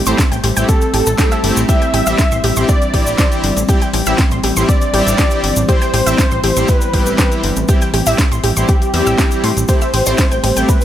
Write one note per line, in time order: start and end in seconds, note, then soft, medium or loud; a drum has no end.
0.00 9.65 G3 medium
0.00 1.65 A3 medium
0.00 9.65 C4 medium
0.06 0.15 A1 medium
0.06 0.17 A3 medium
0.06 0.17 C4 medium
0.06 0.17 E4 medium
0.06 0.17 G4 loud
0.06 0.18 C5 loud
0.06 0.18 C6 medium
0.06 closed hi-hat soft
0.06 shaker medium
0.18 kick loud
0.18 snare loud
0.18 closed hi-hat medium
0.18 shaker medium
0.32 0.40 A1 medium
0.32 0.42 G5 medium
0.32 0.43 G6 medium
0.32 closed hi-hat soft
0.32 shaker soft
0.44 0.52 A1 medium
0.44 0.52 G4 medium
0.44 0.52 G5 medium
0.44 open hi-hat loud
0.57 0.65 A1 medium
0.57 0.74 A3 medium
0.57 0.74 C4 medium
0.57 0.74 E4 medium
0.57 0.74 G4 medium
0.57 0.68 G5 medium
0.57 0.68 G6 medium
0.57 closed hi-hat soft
0.57 shaker medium
0.69 1.59 A4 loud
0.69 kick loud
0.69 closed hi-hat medium
0.69 shaker medium
0.81 closed hi-hat soft
0.81 shaker soft
0.94 1.02 A1 loud
0.94 1.06 G4 medium
0.94 1.06 G5 medium
0.94 open hi-hat loud
1.06 1.15 A1 medium
1.06 1.15 A4 medium
1.06 1.15 A5 medium
1.06 closed hi-hat soft
1.06 shaker medium
1.18 1.36 A3 medium
1.18 1.36 C4 medium
1.18 1.36 E4 medium
1.18 1.36 G4 medium
1.18 1.24 G5 loud
1.18 1.24 G6 medium
1.18 kick loud
1.18 snare loud
1.18 closed hi-hat medium
1.18 shaker medium
1.32 1.40 E5 medium
1.32 1.40 E6 medium
1.32 closed hi-hat soft
1.32 shaker soft
1.44 1.52 G1 medium
1.44 1.61 A3 medium
1.44 1.61 C4 medium
1.44 1.61 E4 medium
1.44 1.61 G4 medium
1.44 open hi-hat loud
1.57 1.65 A1 medium
1.57 closed hi-hat soft
1.57 shaker medium
1.69 9.65 E3 medium
1.69 1.80 G3 medium
1.69 1.80 C4 medium
1.69 1.80 E4 medium
1.69 1.81 G4 medium
1.69 1.80 G4 loud
1.69 2.59 E5 loud
1.69 1.81 G5 medium
1.69 kick loud
1.69 closed hi-hat medium
1.69 shaker medium
1.82 1.87 G5 medium
1.82 1.87 G6 medium
1.82 closed hi-hat soft
1.82 shaker soft
1.94 2.02 A1 loud
1.94 2.02 G4 medium
1.94 2.02 G5 medium
1.94 open hi-hat loud
2.06 2.15 A1 medium
2.06 2.17 G3 medium
2.06 2.17 C4 medium
2.06 2.17 E4 medium
2.06 2.17 G4 loud
2.06 2.18 E5 loud
2.06 2.18 E6 medium
2.06 closed hi-hat soft
2.06 shaker medium
2.18 kick loud
2.18 snare loud
2.18 closed hi-hat medium
2.18 shaker medium
2.32 2.40 A1 medium
2.32 2.43 C6 medium
2.32 closed hi-hat soft
2.32 shaker soft
2.44 2.52 A1 medium
2.44 2.53 G4 medium
2.44 2.53 G5 medium
2.44 open hi-hat loud
2.56 2.65 A1 medium
2.56 2.73 G3 medium
2.56 2.73 C4 medium
2.56 2.73 E4 medium
2.56 2.74 G4 medium
2.56 2.68 C6 medium
2.56 closed hi-hat soft
2.56 shaker medium
2.69 3.59 D5 loud
2.69 kick loud
2.69 closed hi-hat medium
2.69 shaker medium
2.82 closed hi-hat soft
2.82 shaker soft
2.94 3.02 A1 loud
2.94 3.29 G3 medium
2.94 3.29 C4 medium
2.94 3.29 E4 medium
2.94 3.29 G4 loud
2.94 3.02 G4 medium
2.94 3.02 G5 medium
2.94 kick medium
2.94 open hi-hat loud
3.07 3.15 A1 medium
3.07 closed hi-hat soft
3.07 shaker medium
3.18 3.27 C5 medium
3.18 3.27 C6 medium
3.18 kick loud
3.18 snare loud
3.18 closed hi-hat medium
3.18 shaker medium
3.32 3.42 G3 medium
3.32 3.42 C4 medium
3.32 3.42 E4 medium
3.32 3.42 G4 loud
3.32 closed hi-hat soft
3.32 shaker soft
3.44 3.52 G1 medium
3.44 open hi-hat loud
3.57 3.65 A1 medium
3.57 closed hi-hat soft
3.57 shaker medium
3.69 3.80 G3 medium
3.69 3.80 C4 medium
3.69 3.80 E4 medium
3.69 3.80 G4 loud
3.69 3.81 G4 medium
3.69 3.81 G5 medium
3.69 kick loud
3.69 closed hi-hat medium
3.69 shaker medium
3.82 3.87 G5 medium
3.82 3.87 G6 medium
3.82 closed hi-hat soft
3.82 shaker soft
3.94 4.02 A1 medium
3.94 4.02 G4 medium
3.94 4.02 G5 medium
3.94 open hi-hat loud
4.06 4.15 A1 medium
4.06 4.17 G3 medium
4.06 4.17 C4 medium
4.06 4.17 E4 medium
4.06 4.17 G4 loud
4.06 4.18 E5 loud
4.06 4.18 E6 medium
4.06 closed hi-hat soft
4.06 shaker medium
4.18 kick loud
4.18 snare loud
4.18 closed hi-hat medium
4.18 shaker medium
4.31 4.40 A1 medium
4.31 4.43 C6 medium
4.31 closed hi-hat soft
4.31 shaker soft
4.44 4.52 A1 medium
4.44 4.52 G4 medium
4.44 4.52 G5 medium
4.44 open hi-hat loud
4.56 4.65 A1 medium
4.56 4.73 G3 medium
4.56 4.73 C4 medium
4.56 4.73 E4 medium
4.56 4.73 G4 medium
4.56 4.68 C6 medium
4.56 closed hi-hat soft
4.56 shaker medium
4.69 5.59 D5 loud
4.69 kick loud
4.69 closed hi-hat medium
4.69 shaker medium
4.82 closed hi-hat soft
4.82 shaker soft
4.94 5.02 A1 loud
4.94 5.29 G3 medium
4.94 5.29 C4 medium
4.94 5.29 E4 medium
4.94 5.29 G4 loud
4.94 5.02 G4 medium
4.94 5.02 G5 medium
4.94 open hi-hat loud
5.07 5.14 A1 medium
5.07 closed hi-hat soft
5.07 shaker medium
5.18 5.27 C5 medium
5.18 5.27 C6 medium
5.18 kick loud
5.18 snare loud
5.18 closed hi-hat medium
5.18 shaker medium
5.31 5.42 G3 medium
5.31 5.42 C4 medium
5.31 5.42 E4 medium
5.31 5.42 G4 medium
5.31 closed hi-hat soft
5.31 shaker soft
5.44 5.52 G1 medium
5.44 open hi-hat loud
5.56 5.64 A1 medium
5.56 closed hi-hat soft
5.56 shaker medium
5.68 5.80 G3 medium
5.68 5.80 C4 medium
5.68 5.80 E4 medium
5.68 5.80 G4 loud
5.68 5.81 G4 medium
5.68 6.70 C5 loud
5.68 5.80 G5 medium
5.68 kick loud
5.68 closed hi-hat medium
5.68 shaker medium
5.82 5.87 G5 medium
5.82 5.86 G6 medium
5.82 closed hi-hat soft
5.82 shaker soft
5.94 6.02 A1 medium
5.94 6.02 G4 medium
5.94 6.02 G5 medium
5.94 open hi-hat loud
6.07 6.14 A1 medium
6.07 6.17 G3 medium
6.07 6.17 C4 medium
6.07 6.17 E4 medium
6.07 6.17 G4 loud
6.07 6.18 E5 loud
6.07 6.18 E6 medium
6.07 closed hi-hat soft
6.07 shaker medium
6.18 kick loud
6.18 snare loud
6.18 closed hi-hat medium
6.18 shaker medium
6.31 6.39 A1 medium
6.31 6.43 C6 medium
6.31 closed hi-hat soft
6.31 shaker soft
6.44 6.52 A1 medium
6.44 6.52 G4 medium
6.44 6.52 G5 medium
6.44 open hi-hat loud
6.57 6.65 A1 medium
6.57 6.73 G3 medium
6.57 6.73 C4 medium
6.57 6.73 E4 medium
6.57 6.73 G4 medium
6.57 6.68 C6 medium
6.57 closed hi-hat soft
6.57 shaker medium
6.68 7.59 B4 loud
6.68 kick loud
6.68 closed hi-hat medium
6.68 shaker medium
6.81 closed hi-hat soft
6.81 shaker soft
6.94 7.02 A1 loud
6.94 7.29 G3 medium
6.94 7.29 C4 medium
6.94 7.29 E4 medium
6.94 7.02 G4 medium
6.94 7.29 G4 loud
6.94 7.02 G5 medium
6.94 kick medium
6.94 open hi-hat loud
7.06 7.14 A1 medium
7.06 closed hi-hat soft
7.06 shaker medium
7.18 7.27 C5 medium
7.18 7.27 C6 medium
7.18 kick loud
7.18 snare loud
7.18 closed hi-hat medium
7.18 shaker medium
7.32 7.42 G3 medium
7.32 7.42 C4 medium
7.32 7.42 E4 medium
7.32 7.42 G4 loud
7.32 closed hi-hat soft
7.32 shaker soft
7.44 7.52 G1 medium
7.44 open hi-hat loud
7.56 7.64 A1 medium
7.56 closed hi-hat soft
7.56 shaker medium
7.69 7.80 G3 medium
7.69 7.80 C4 medium
7.69 7.80 E4 medium
7.69 7.81 G4 medium
7.69 7.80 G4 loud
7.69 7.81 G5 medium
7.69 kick loud
7.69 closed hi-hat medium
7.69 shaker medium
7.82 7.87 G5 medium
7.82 7.87 G6 medium
7.82 closed hi-hat soft
7.82 shaker soft
7.94 8.02 A1 medium
7.94 8.02 G4 medium
7.94 8.02 G5 medium
7.94 open hi-hat loud
8.06 8.15 A1 medium
8.06 8.17 G3 medium
8.06 8.17 C4 medium
8.06 8.17 E4 medium
8.06 8.17 G4 medium
8.06 8.18 E5 loud
8.06 8.18 E6 medium
8.06 open hi-hat medium
8.06 shaker medium
8.18 kick loud
8.18 snare loud
8.18 closed hi-hat medium
8.18 shaker medium
8.32 8.40 A1 medium
8.32 8.43 C6 medium
8.32 closed hi-hat soft
8.32 shaker soft
8.44 8.52 A1 loud
8.44 8.52 G4 medium
8.44 8.52 G5 medium
8.44 open hi-hat loud
8.57 8.65 A1 medium
8.57 8.73 G3 medium
8.57 8.73 C4 medium
8.57 8.73 E4 medium
8.57 8.73 G4 medium
8.57 8.68 C6 medium
8.57 closed hi-hat soft
8.57 shaker medium
8.68 9.59 G4 loud
8.68 kick loud
8.68 closed hi-hat medium
8.68 shaker medium
8.82 closed hi-hat soft
8.82 shaker soft
8.94 9.02 E2 loud
8.94 9.29 G3 medium
8.94 9.29 C4 medium
8.94 9.29 E4 medium
8.94 9.29 G4 loud
8.94 9.02 E6 medium
8.94 open hi-hat loud
9.07 9.15 A1 medium
9.07 9.15 E6 medium
9.07 closed hi-hat soft
9.07 shaker medium
9.18 9.27 G4 medium
9.18 9.27 G5 medium
9.18 kick loud
9.18 snare loud
9.18 closed hi-hat medium
9.18 shaker medium
9.31 9.42 G3 medium
9.31 9.42 C4 medium
9.31 9.42 E4 medium
9.31 9.42 G4 medium
9.31 closed hi-hat soft
9.31 shaker soft
9.44 9.52 A2 medium
9.44 9.56 C6 medium
9.44 open hi-hat loud
9.57 9.65 A1 medium
9.57 closed hi-hat soft
9.57 shaker medium
9.68 10.85 G3 medium
9.68 9.80 A3 medium
9.68 10.85 A3 medium
9.68 9.80 C4 medium
9.68 10.85 C4 loud
9.68 9.80 E4 medium
9.68 9.81 G4 medium
9.68 9.80 G4 loud
9.68 10.59 C5 loud
9.68 9.81 G5 medium
9.68 kick loud
9.68 closed hi-hat medium
9.68 ride medium
9.68 shaker medium
9.81 9.87 E5 medium
9.81 9.86 E6 medium
9.81 closed hi-hat soft
9.81 shaker soft
9.94 10.02 A1 medium
9.94 10.02 G4 medium
9.94 10.02 G5 medium
9.94 open hi-hat loud
9.94 ride medium
10.06 10.15 A1 medium
10.06 10.17 A3 medium
10.06 10.17 C4 medium
10.06 10.17 E4 medium
10.06 10.17 G4 medium
10.06 10.18 C5 loud
10.06 10.18 C6 medium
10.06 closed hi-hat soft
10.06 shaker medium
10.18 kick loud
10.18 snare loud
10.18 closed hi-hat medium
10.18 ride medium
10.18 shaker medium
10.32 10.40 A1 medium
10.32 10.42 G5 medium
10.32 10.43 G6 medium
10.32 closed hi-hat soft
10.32 shaker soft
10.44 10.52 A1 loud
10.44 10.52 G4 medium
10.44 10.52 G5 medium
10.44 open hi-hat loud
10.44 ride medium
10.56 10.65 A1 medium
10.56 10.73 A3 medium
10.56 10.73 C4 medium
10.56 10.73 E4 medium
10.56 10.73 G4 medium
10.56 10.68 G5 medium
10.56 10.68 G6 medium
10.56 closed hi-hat soft
10.56 shaker medium
10.69 10.85 B4 loud
10.69 kick loud
10.69 closed hi-hat medium
10.69 ride medium
10.69 shaker medium
10.81 shaker soft